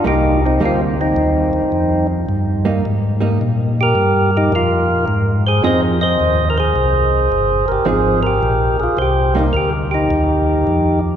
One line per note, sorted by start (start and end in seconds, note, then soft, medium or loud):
0.04 0.59 C2 medium
0.04 0.38 G3 medium
0.04 0.39 A#3 medium
0.04 0.39 D#4 medium
0.04 0.41 D#4 medium
0.04 0.44 G4 medium
0.46 0.61 C4 medium
0.46 0.63 D#4 medium
0.60 1.14 D2 medium
0.60 0.94 G3 medium
0.60 0.94 A#3 medium
0.60 0.95 D#4 medium
0.66 0.81 C4 medium
0.66 0.81 F4 medium
1.01 2.07 C4 medium
1.01 2.07 D#4 medium
1.16 1.51 D#2 medium
1.53 1.62 D#2 soft
1.72 2.26 F2 medium
2.29 2.82 G2 medium
2.65 2.82 G3 medium
2.65 2.82 A#3 medium
2.65 2.82 D#4 medium
2.85 3.39 G#2 medium
3.20 3.37 G3 medium
3.20 3.38 A#3 medium
3.20 3.38 D#4 medium
3.41 3.95 A#2 medium
3.81 4.31 G4 medium
3.81 4.37 A#4 loud
3.95 4.49 G2 medium
4.37 4.52 D#4 medium
4.37 4.54 G4 medium
4.52 5.06 F2 medium
4.52 5.06 F4 medium
4.52 5.05 A#4 medium
5.08 5.62 G#2 medium
5.47 5.64 G#4 medium
5.47 5.63 C5 medium
5.63 6.17 F2 medium
5.63 5.97 F3 medium
5.63 5.97 C4 medium
5.63 5.97 D#4 medium
5.63 5.97 G#4 medium
5.63 5.83 C5 medium
5.63 5.81 D#5 loud
6.01 6.45 C5 medium
6.01 6.49 D#5 loud
6.20 6.74 D#2 medium
6.50 6.58 A#4 medium
6.58 7.66 G#4 medium
6.58 7.72 C5 medium
6.76 7.29 C2 medium
7.32 7.66 G1 medium
7.68 7.78 G1 soft
7.68 7.87 G4 medium
7.68 7.87 A#4 medium
7.85 8.41 G#1 medium
7.85 8.20 F3 medium
7.85 8.20 C4 medium
7.85 8.20 D#4 medium
7.85 8.20 G#4 medium
7.85 8.23 G#4 medium
7.85 8.21 C5 medium
8.23 8.77 G4 medium
8.23 8.81 A#4 medium
8.43 8.77 A#1 medium
8.80 8.89 A#1 soft
8.80 8.99 F4 medium
8.80 8.99 G#4 medium
8.97 9.52 C2 medium
8.97 9.37 C5 medium
9.02 9.34 G4 medium
9.35 9.52 G3 medium
9.35 9.52 A#3 medium
9.35 9.53 D#4 medium
9.35 9.43 G4 medium
9.39 9.46 D#4 medium
9.53 10.08 D2 medium
9.53 9.73 G4 medium
9.53 9.70 A#4 medium
9.91 11.01 D#4 medium
9.91 10.99 G4 medium
10.11 10.65 D#2 medium
10.67 11.16 F2 medium